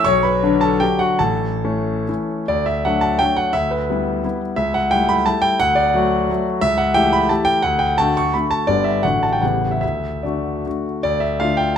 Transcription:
0.04 0.41 B1 medium
0.04 0.22 C#5 medium
0.04 0.23 C#6 loud
0.23 0.60 B4 medium
0.23 0.62 B5 medium
0.43 0.78 D3 medium
0.43 0.78 F#3 medium
0.43 0.78 D4 medium
0.61 0.80 A4 medium
0.61 0.81 A5 medium
0.80 1.17 D3 soft
0.80 1.17 F#3 soft
0.80 1.18 D4 soft
0.80 0.99 G4 medium
0.80 1.00 G5 medium
0.99 1.20 F#4 medium
0.99 1.20 F#5 medium
1.19 1.63 A1 medium
1.19 2.04 A4 medium
1.19 2.07 A5 medium
1.64 2.04 E3 soft
1.64 2.04 A3 soft
1.64 2.04 C#4 medium
2.08 2.45 E3 soft
2.08 2.45 A3 soft
2.08 2.45 C#4 soft
2.48 2.84 D2 medium
2.48 2.67 D5 medium
2.66 2.85 E5 medium
2.85 3.17 F#3 soft
2.85 3.18 A3 soft
2.85 3.18 D4 medium
2.85 3.03 F#5 medium
3.01 3.20 A5 medium
3.19 3.51 F#3 soft
3.19 3.51 A3 soft
3.19 3.52 D4 soft
3.19 3.37 G5 medium
3.37 3.54 F#5 medium
3.53 3.89 D2 medium
3.53 3.71 E5 medium
3.71 4.40 B4 medium
3.90 4.21 G3 soft
3.90 4.21 B3 medium
3.90 4.21 E4 soft
4.24 4.55 G3 soft
4.24 4.55 B3 soft
4.24 4.55 E4 soft
4.56 4.91 C#2 medium
4.56 4.74 E5 medium
4.74 4.92 F#5 medium
4.91 5.22 G3 soft
4.91 5.22 A3 medium
4.91 5.22 E4 medium
4.91 5.08 G5 medium
5.09 5.25 B5 loud
5.26 5.56 G3 medium
5.26 5.56 A3 soft
5.26 5.57 E4 medium
5.26 5.42 A5 medium
5.42 5.59 G5 loud
5.60 5.94 D2 medium
5.60 5.76 F#5 loud
5.75 6.45 D5 medium
5.94 6.26 F#3 medium
5.94 6.26 A3 medium
5.94 6.27 F#4 medium
6.30 6.59 F#3 soft
6.30 6.59 A3 soft
6.30 6.59 F#4 medium
6.61 6.95 C#2 medium
6.61 6.78 E5 loud
6.78 6.95 F#5 medium
6.94 7.27 E3 medium
6.94 7.27 A3 medium
6.94 7.27 G4 medium
6.94 7.13 G5 loud
7.13 7.30 B5 medium
7.29 7.60 E3 soft
7.29 7.60 A3 medium
7.29 7.60 G4 medium
7.29 7.46 A5 medium
7.45 7.62 G5 loud
7.63 7.97 D2 medium
7.63 7.79 F#5 loud
7.79 7.97 G5 medium
7.98 8.31 D3 medium
7.98 8.31 A3 medium
7.98 8.31 F#4 medium
7.98 8.16 A5 loud
8.17 8.34 C#6 medium
8.34 8.65 D3 medium
8.34 8.65 A3 medium
8.34 8.65 F#4 soft
8.34 8.51 B5 medium
8.51 8.68 A5 medium
8.67 9.03 G1 medium
8.67 9.01 D3 soft
8.67 9.01 B3 soft
8.67 9.01 G4 soft
8.67 8.85 D5 medium
8.84 9.04 E5 medium
9.03 9.41 A1 soft
9.03 9.39 D3 soft
9.03 9.40 A3 soft
9.03 9.40 F#4 soft
9.03 9.23 F#5 medium
9.23 9.33 A5 medium
9.33 9.42 G5 medium
9.42 9.81 A1 soft
9.42 9.79 C#3 soft
9.42 9.79 B3 soft
9.42 9.79 G4 soft
9.42 9.72 F#5 medium
9.71 9.80 E5 medium
9.81 10.23 D2 soft
9.81 10.24 E5 medium
10.23 10.61 D3 soft
10.23 10.62 A3 soft
10.23 10.62 F#4 soft
10.23 10.85 D5 soft
10.66 11.01 D3 soft
10.66 11.01 A3 soft
10.66 11.01 F#4 soft
11.03 11.40 D2 medium
11.03 11.22 D5 medium
11.20 11.40 E5 medium
11.40 11.73 D3 medium
11.40 11.73 A3 soft
11.40 11.73 F4 medium
11.40 11.59 F5 medium
11.57 11.76 G5 medium

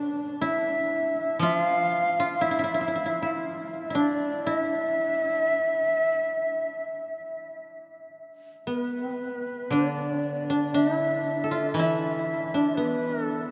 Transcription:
0.00 0.14 B3 medium
0.00 2.22 D4 soft
0.41 1.48 E4 medium
0.41 1.39 E5 medium
1.39 4.44 F3 medium
1.39 2.19 F4 medium
1.39 1.59 E5 medium
1.59 2.43 F5 medium
2.20 2.47 F4 medium
2.41 2.51 E4 medium
2.41 3.44 E5 medium
2.51 2.59 E4 medium
2.59 2.63 E4 medium
2.64 2.74 E4 soft
2.74 2.81 E4 medium
2.81 2.87 E4 soft
2.88 2.95 E4 soft
2.96 3.05 E4 soft
3.06 3.22 E4 soft
3.22 3.90 E4 medium
3.86 4.46 E4 soft
3.86 3.95 E5 medium
3.94 6.37 D4 medium
3.94 4.44 D5 medium
4.43 7.57 E4 medium
4.43 7.59 E5 medium
8.67 10.21 B3 medium
8.67 9.75 B4 medium
9.71 12.75 D3 soft
9.71 10.21 D4 medium
9.71 10.76 D5 medium
10.21 10.49 B3 medium
10.50 10.74 D4 medium
10.74 10.94 D4 medium
10.74 11.74 E5 medium
10.94 11.57 E4 medium
11.44 13.34 A4 soft
11.51 11.85 F4 medium
11.74 13.51 E3 soft
11.74 12.77 E5 medium
11.79 13.51 E4 medium
12.54 13.51 D4 medium
12.75 13.51 B3 medium
12.75 13.23 B4 medium
13.23 13.50 A4 medium

